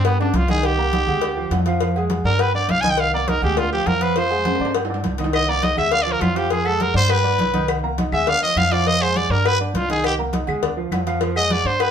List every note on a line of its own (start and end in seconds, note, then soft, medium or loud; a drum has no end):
0.00 0.31 G2 medium
0.04 0.19 B3 medium
0.04 0.16 G4 medium
0.04 0.16 G5 medium
0.04 0.16 G6 medium
0.04 cowbell loud
0.04 high conga soft
0.04 low agogo loud
0.19 0.44 D4 medium
0.19 0.37 D4 medium
0.19 0.44 D5 medium
0.19 0.44 D6 medium
0.19 high conga soft
0.19 high timbale loud
0.33 1.02 C2 loud
0.33 0.50 F4 medium
0.33 cowbell medium
0.33 high conga medium
0.33 low timbale medium
0.33 low agogo medium
0.48 0.73 D#3 medium
0.48 0.73 D#4 medium
0.48 0.67 G#4 loud
0.48 0.73 D#5 loud
0.48 cowbell medium
0.48 high conga medium
0.48 low timbale medium
0.48 low agogo medium
0.63 1.53 G4 medium
0.63 cowbell loud
0.63 high conga soft
0.63 low agogo loud
0.78 0.90 A#3 medium
0.78 0.90 A#4 medium
0.78 0.90 A#5 medium
0.78 high conga soft
0.93 1.05 D#4 medium
0.93 1.05 D#5 medium
0.93 1.05 D#6 medium
0.93 cowbell medium
0.93 high conga loud
0.93 low timbale medium
0.93 low agogo loud
1.07 1.48 D2 loud
1.07 1.19 G#3 medium
1.07 1.19 G#4 medium
1.07 1.20 G#5 medium
1.07 high conga soft
1.07 low conga medium
1.07 low agogo loud
1.22 1.34 D4 medium
1.22 1.35 D5 medium
1.22 1.35 D6 medium
1.22 cowbell loud
1.22 high conga soft
1.22 low agogo medium
1.36 1.61 F3 medium
1.36 1.61 F4 medium
1.36 1.61 F5 medium
1.36 high conga soft
1.51 2.19 F2 medium
1.51 cowbell medium
1.51 high conga medium
1.51 low timbale medium
1.51 low agogo loud
1.66 1.78 F3 loud
1.66 1.78 F4 medium
1.66 1.79 F5 loud
1.66 cowbell medium
1.66 high conga soft
1.81 1.93 F3 medium
1.81 1.93 F4 medium
1.81 1.93 F5 medium
1.81 cowbell loud
1.81 high conga soft
1.81 low agogo medium
1.95 2.21 G#3 medium
1.95 2.21 G#4 medium
1.95 2.21 G#5 medium
1.95 high conga soft
1.95 low agogo loud
2.10 cowbell medium
2.10 high conga loud
2.10 low timbale medium
2.24 2.66 G2 loud
2.24 2.37 D4 medium
2.24 2.42 A#4 loud
2.24 2.37 D5 medium
2.24 2.37 D6 medium
2.24 high conga soft
2.24 low agogo medium
2.39 2.51 G4 medium
2.39 2.55 B4 loud
2.39 2.51 G5 medium
2.39 2.52 G6 medium
2.39 cowbell loud
2.39 high conga soft
2.39 low agogo loud
2.54 2.78 D4 medium
2.54 2.79 D5 medium
2.54 2.72 D5 medium
2.54 2.79 D6 medium
2.54 high conga soft
2.68 3.37 C2 medium
2.68 2.82 F5 loud
2.68 cowbell medium
2.68 high conga medium
2.68 low timbale medium
2.68 low agogo medium
2.81 3.08 D#3 medium
2.81 3.08 D#4 loud
2.81 3.08 D#5 loud
2.81 2.92 G#5 loud
2.81 cowbell medium
2.81 high conga medium
2.81 low agogo medium
2.90 3.01 G5 medium
2.97 3.14 F5 loud
2.97 cowbell loud
2.97 high conga soft
2.97 low agogo loud
3.13 3.25 A#3 medium
3.13 3.25 A#4 medium
3.13 3.30 D5 medium
3.13 3.26 A#5 medium
3.13 high conga soft
3.27 3.40 D#4 medium
3.27 3.43 A#4 medium
3.27 3.40 D#5 medium
3.27 3.40 D#6 medium
3.27 cowbell medium
3.27 high conga loud
3.27 low timbale medium
3.27 low agogo medium
3.42 3.83 D2 loud
3.42 3.55 G#3 medium
3.42 3.59 G4 medium
3.42 3.55 G#4 medium
3.42 3.55 G#5 medium
3.42 high conga soft
3.42 low conga loud
3.42 low agogo loud
3.57 3.69 D4 medium
3.57 3.72 F4 medium
3.57 3.70 D5 medium
3.57 3.70 D6 medium
3.57 cowbell loud
3.57 high conga soft
3.57 low conga medium
3.57 low agogo medium
3.72 3.96 F3 medium
3.72 3.96 F4 medium
3.72 3.88 G4 medium
3.72 3.96 F5 medium
3.72 high conga soft
3.86 4.54 F2 medium
3.86 4.04 A#4 medium
3.86 cowbell medium
3.86 high conga medium
3.86 low timbale medium
3.86 low agogo loud
4.01 4.13 F3 loud
4.01 4.13 F4 medium
4.01 4.19 B4 medium
4.01 4.14 F5 medium
4.01 cowbell medium
4.01 high conga soft
4.16 4.28 F3 medium
4.16 4.29 F4 medium
4.16 4.75 C5 loud
4.16 4.29 F5 medium
4.16 cowbell loud
4.16 high conga soft
4.16 low agogo medium
4.31 4.55 G#3 medium
4.31 4.55 G#4 medium
4.31 4.55 G#5 medium
4.31 high conga soft
4.31 low agogo loud
4.45 cowbell medium
4.45 high conga loud
4.45 high timbale medium
4.55 high timbale medium
4.60 5.01 G2 loud
4.60 4.72 D4 medium
4.60 4.72 D5 medium
4.60 4.73 D6 medium
4.60 high conga soft
4.60 low agogo medium
4.65 high timbale loud
4.75 4.87 G4 medium
4.75 4.87 G5 medium
4.75 4.88 G6 medium
4.75 cowbell loud
4.75 high conga soft
4.75 low agogo loud
4.85 low timbale medium
4.90 5.14 D4 medium
4.90 5.14 D5 medium
4.90 5.14 D6 medium
4.90 high conga soft
4.94 low timbale medium
5.04 5.72 C2 medium
5.04 cowbell medium
5.04 high conga medium
5.04 low timbale medium
5.04 low agogo medium
5.18 5.43 D#3 medium
5.18 5.43 D#4 medium
5.18 5.43 D#5 loud
5.18 cowbell medium
5.18 low agogo medium
5.24 low timbale medium
5.33 5.51 D#5 loud
5.33 cowbell loud
5.33 high conga soft
5.33 low agogo loud
5.33 claves medium
5.48 5.60 A#3 medium
5.48 5.61 A#4 medium
5.48 5.65 D5 loud
5.48 5.61 A#5 medium
5.48 high conga soft
5.62 5.75 D#4 medium
5.62 5.75 D#5 medium
5.62 5.78 D#5 loud
5.62 5.75 D#6 medium
5.62 cowbell medium
5.62 high conga loud
5.62 low timbale medium
5.62 low agogo medium
5.77 6.18 D2 loud
5.77 5.90 G#3 medium
5.77 5.89 G#4 medium
5.77 5.94 E5 loud
5.77 5.90 G#5 medium
5.77 high conga soft
5.77 low conga medium
5.77 low agogo loud
5.77 claves medium
5.91 6.04 D4 medium
5.91 6.04 D5 medium
5.91 6.04 F5 loud
5.91 6.04 D6 medium
5.91 cowbell loud
5.91 high conga soft
5.91 low agogo medium
6.02 6.30 F3 medium
6.02 6.13 D5 loud
6.02 6.31 F5 medium
6.06 6.31 F4 medium
6.06 high conga soft
6.12 6.23 A#4 medium
6.21 6.90 F2 medium
6.21 6.38 F4 medium
6.21 cowbell medium
6.21 high conga medium
6.21 low timbale medium
6.21 low agogo medium
6.21 claves medium
6.35 6.48 F3 medium
6.35 6.48 F4 loud
6.35 6.52 G4 medium
6.35 6.48 F5 medium
6.35 cowbell medium
6.50 6.63 F3 medium
6.50 6.63 F4 medium
6.50 6.68 G#4 loud
6.50 6.63 F5 medium
6.50 cowbell loud
6.50 high conga soft
6.50 low agogo medium
6.65 6.89 G#3 medium
6.65 6.90 G#4 medium
6.65 6.83 A4 loud
6.65 6.90 G#5 medium
6.65 high conga soft
6.65 low agogo loud
6.65 claves medium
6.80 6.96 A#4 medium
6.80 cowbell medium
6.80 high conga loud
6.80 low timbale medium
6.94 7.36 G2 loud
6.94 7.07 D4 medium
6.94 7.12 C5 loud
6.94 7.07 D5 medium
6.94 7.07 D6 medium
6.94 high conga soft
6.94 low agogo medium
7.09 7.21 G4 medium
7.09 7.69 B4 loud
7.09 7.21 G5 medium
7.09 7.22 G6 medium
7.09 cowbell loud
7.09 high conga soft
7.09 low agogo loud
7.09 claves medium
7.24 7.48 D4 medium
7.24 7.48 D5 medium
7.24 7.48 D6 medium
7.24 high conga soft
7.38 8.07 C2 medium
7.38 cowbell medium
7.38 high conga medium
7.38 low timbale medium
7.38 low agogo medium
7.53 7.78 D#3 loud
7.53 7.78 D#4 loud
7.53 7.78 D#5 loud
7.53 cowbell medium
7.53 high conga medium
7.53 low agogo medium
7.68 cowbell loud
7.68 high conga soft
7.68 low agogo loud
7.68 claves medium
7.83 7.95 A#3 medium
7.83 7.96 A#4 medium
7.83 7.96 A#5 medium
7.83 high conga soft
7.98 8.10 D#4 medium
7.98 8.10 D#5 medium
7.98 8.10 D#6 medium
7.98 cowbell medium
7.98 high conga loud
7.98 low timbale medium
7.98 low agogo medium
8.12 8.53 D2 medium
8.12 8.25 G#3 medium
8.12 8.25 G#4 medium
8.12 8.30 E5 loud
8.12 8.25 G#5 medium
8.12 high conga soft
8.12 low conga medium
8.12 low agogo loud
8.12 claves medium
8.27 8.39 D4 medium
8.27 8.40 D5 medium
8.27 8.42 F5 loud
8.27 8.40 D6 medium
8.27 cowbell loud
8.27 high conga soft
8.27 low conga medium
8.27 low agogo medium
8.42 8.66 F3 medium
8.42 8.66 F4 medium
8.42 8.59 D#5 loud
8.42 8.67 F5 medium
8.42 high conga soft
8.56 9.24 F2 medium
8.56 8.73 F5 loud
8.56 cowbell medium
8.56 high conga medium
8.56 low timbale medium
8.56 low agogo loud
8.56 claves medium
8.71 8.84 F3 medium
8.71 8.84 F4 loud
8.71 8.89 D5 loud
8.71 8.84 F5 medium
8.71 cowbell medium
8.71 high conga soft
8.86 8.98 F3 medium
8.86 8.98 F4 medium
8.86 9.04 D#5 loud
8.86 8.99 F5 medium
8.86 cowbell medium
8.86 high conga soft
8.86 low agogo medium
9.01 9.25 G#3 medium
9.01 9.25 G#4 medium
9.01 9.18 C5 loud
9.01 9.25 G#5 medium
9.01 high conga soft
9.01 low agogo loud
9.01 claves medium
9.15 9.33 D5 loud
9.15 cowbell medium
9.15 high conga loud
9.15 low timbale medium
9.29 9.71 G2 loud
9.29 9.42 D4 medium
9.29 9.48 A#4 loud
9.29 9.43 D5 medium
9.29 9.43 D6 medium
9.29 high conga soft
9.29 low agogo medium
9.45 9.57 G4 medium
9.45 9.60 B4 loud
9.45 9.58 G5 medium
9.45 9.58 G6 medium
9.45 cowbell loud
9.45 high conga soft
9.45 low agogo loud
9.45 claves medium
9.60 9.84 D4 medium
9.60 9.77 D4 medium
9.60 9.84 D5 medium
9.60 9.85 D6 medium
9.60 high conga soft
9.74 10.42 C2 loud
9.74 9.90 F4 medium
9.74 cowbell medium
9.74 high conga medium
9.74 low timbale medium
9.74 low agogo medium
9.89 10.13 D#3 medium
9.89 10.14 D#4 medium
9.89 10.04 G#4 loud
9.89 10.14 D#5 loud
9.89 cowbell medium
9.89 low agogo medium
10.04 10.14 G4 loud
10.04 cowbell loud
10.04 high conga soft
10.04 low agogo loud
10.04 claves medium
10.18 10.31 A#3 medium
10.18 10.31 A#4 medium
10.18 10.31 A#5 medium
10.18 high conga soft
10.33 10.45 D#4 medium
10.33 10.46 D#5 medium
10.33 10.46 D#6 medium
10.33 cowbell medium
10.33 high conga loud
10.33 low timbale medium
10.33 low agogo medium
10.47 10.89 D2 loud
10.47 10.60 G#3 medium
10.47 10.60 G#4 medium
10.47 10.60 G#5 medium
10.47 high conga soft
10.47 low conga medium
10.47 low agogo loud
10.47 claves medium
10.62 10.75 D4 medium
10.62 10.75 D5 medium
10.62 10.75 D6 medium
10.62 cowbell loud
10.62 high conga soft
10.62 low conga medium
10.62 low agogo medium
10.77 11.01 F3 medium
10.77 11.01 F4 medium
10.77 11.01 F5 medium
10.77 high conga soft
10.92 11.60 F2 loud
10.92 cowbell medium
10.92 high conga medium
10.92 low timbale medium
10.92 low agogo loud
10.92 claves medium
11.06 11.19 F3 medium
11.06 11.19 F4 loud
11.06 11.19 F5 loud
11.06 cowbell medium
11.06 high conga soft
11.21 11.33 F3 loud
11.21 11.33 F4 medium
11.21 11.33 F5 medium
11.21 cowbell loud
11.21 high conga soft
11.21 low agogo medium
11.36 11.60 G#3 medium
11.36 11.60 G#4 medium
11.36 11.53 D#5 loud
11.36 11.60 G#5 medium
11.36 high conga soft
11.36 low agogo loud
11.36 claves medium
11.50 11.68 D5 loud
11.50 cowbell medium
11.50 high conga loud
11.50 low timbale medium
11.65 11.91 G2 loud
11.65 11.77 D4 medium
11.65 11.83 C5 medium
11.65 11.77 D5 medium
11.65 11.78 D6 medium
11.65 high conga soft
11.65 low agogo medium
11.80 11.91 G4 medium
11.80 11.91 B4 loud
11.80 11.91 G5 medium
11.80 11.91 G6 medium
11.80 cowbell loud
11.80 high conga soft
11.80 low agogo loud
11.80 claves medium